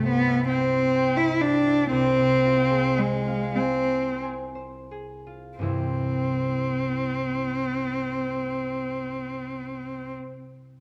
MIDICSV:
0, 0, Header, 1, 3, 480
1, 0, Start_track
1, 0, Key_signature, 0, "major"
1, 0, Tempo, 882353
1, 504, Tempo, 978793
1, 984, Time_signature, 6, 3, 24, 8
1, 984, Tempo, 1067616
1, 1464, Tempo, 1214575
1, 1944, Tempo, 1379310
1, 3384, Tempo, 1324503
1, 4282, End_track
2, 0, Start_track
2, 0, Title_t, "Harp"
2, 0, Program_c, 0, 46
2, 0, Note_on_c, 0, 36, 41
2, 0, Note_on_c, 0, 43, 32
2, 0, Note_on_c, 0, 64, 33
2, 0, Note_on_c, 0, 67, 31
2, 0, Note_on_c, 0, 84, 35
2, 30, Note_on_c, 0, 72, 35
2, 149, Note_on_c, 0, 76, 35
2, 266, Note_on_c, 0, 79, 39
2, 388, Note_off_c, 0, 84, 0
2, 394, Note_on_c, 0, 84, 38
2, 512, Note_off_c, 0, 79, 0
2, 517, Note_on_c, 0, 79, 35
2, 618, Note_off_c, 0, 72, 0
2, 624, Note_on_c, 0, 72, 35
2, 742, Note_off_c, 0, 67, 0
2, 748, Note_on_c, 0, 67, 35
2, 856, Note_off_c, 0, 64, 0
2, 862, Note_on_c, 0, 64, 35
2, 981, Note_off_c, 0, 36, 0
2, 987, Note_on_c, 0, 36, 45
2, 1003, Note_off_c, 0, 64, 0
2, 1004, Note_off_c, 0, 43, 0
2, 1006, Note_off_c, 0, 76, 0
2, 1007, Note_off_c, 0, 67, 0
2, 1008, Note_off_c, 0, 79, 0
2, 1108, Note_on_c, 0, 48, 32
2, 1227, Note_on_c, 0, 65, 32
2, 1342, Note_on_c, 0, 68, 33
2, 1466, Note_off_c, 0, 72, 0
2, 1470, Note_on_c, 0, 72, 34
2, 1583, Note_on_c, 0, 77, 34
2, 1703, Note_on_c, 0, 80, 35
2, 1826, Note_off_c, 0, 84, 0
2, 1831, Note_on_c, 0, 84, 34
2, 1953, Note_off_c, 0, 80, 0
2, 1957, Note_on_c, 0, 80, 31
2, 2066, Note_off_c, 0, 72, 0
2, 2071, Note_on_c, 0, 72, 29
2, 2192, Note_off_c, 0, 68, 0
2, 2196, Note_on_c, 0, 68, 28
2, 2315, Note_off_c, 0, 65, 0
2, 2319, Note_on_c, 0, 65, 25
2, 2431, Note_on_c, 0, 43, 28
2, 2436, Note_off_c, 0, 36, 0
2, 2439, Note_on_c, 0, 52, 25
2, 2440, Note_on_c, 0, 36, 32
2, 2445, Note_on_c, 0, 64, 27
2, 2446, Note_on_c, 0, 55, 27
2, 2454, Note_off_c, 0, 48, 0
2, 2454, Note_off_c, 0, 65, 0
2, 2454, Note_off_c, 0, 77, 0
2, 2454, Note_on_c, 0, 60, 28
2, 2455, Note_off_c, 0, 68, 0
2, 2457, Note_off_c, 0, 80, 0
2, 3202, Note_off_c, 0, 84, 0
2, 3430, Note_off_c, 0, 72, 0
2, 4051, Note_off_c, 0, 36, 0
2, 4053, Note_off_c, 0, 43, 0
2, 4053, Note_off_c, 0, 52, 0
2, 4053, Note_off_c, 0, 55, 0
2, 4054, Note_off_c, 0, 60, 0
2, 4056, Note_off_c, 0, 64, 0
2, 4282, End_track
3, 0, Start_track
3, 0, Title_t, "Cello"
3, 0, Program_c, 1, 42
3, 22, Note_on_c, 1, 59, 61
3, 256, Note_off_c, 1, 59, 0
3, 260, Note_on_c, 1, 60, 60
3, 623, Note_on_c, 1, 64, 55
3, 631, Note_off_c, 1, 60, 0
3, 742, Note_on_c, 1, 62, 60
3, 749, Note_off_c, 1, 64, 0
3, 983, Note_off_c, 1, 62, 0
3, 986, Note_on_c, 1, 60, 67
3, 1466, Note_on_c, 1, 56, 58
3, 1472, Note_off_c, 1, 60, 0
3, 1695, Note_on_c, 1, 60, 52
3, 1701, Note_off_c, 1, 56, 0
3, 1945, Note_off_c, 1, 60, 0
3, 2427, Note_on_c, 1, 60, 40
3, 4038, Note_off_c, 1, 60, 0
3, 4282, End_track
0, 0, End_of_file